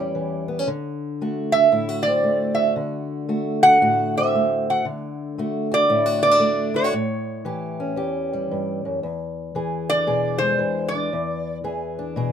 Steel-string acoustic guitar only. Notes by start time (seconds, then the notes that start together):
Already playing: E2 E3 C#4 G4
0.00 G3
0.15 E3
0.48 B3
0.59 C#4
0.67 D3
1.21 A3 F#4
1.55 F#4
1.72 A2 E4
1.89 F#4
2.07 C4
2.23 A3
2.56 F#4
2.76 D3
3.29 A3 F#4
3.63 F#4
3.82 A2 F#4
4.17 C4
4.35 A3
4.70 F#4
4.85 D3
5.38 A3 F#4
5.72 F#4
5.89 A2 E4
6.06 F#4
6.23 B3
6.31 D4
6.40 A3
6.74 E4
6.84 F#4
6.93 A2
7.45 E3 G4
7.80 C#4
7.96 E2 G4
8.33 G3
8.51 G2
8.85 F#2
9.03 E2
9.55 E3 G#4
9.91 D4
10.07 B2 G#4
10.41 G#3
10.59 E3
10.94 D4
11.13 E2
11.64 E3 G#4
11.99 D4
12.16 B2 G#4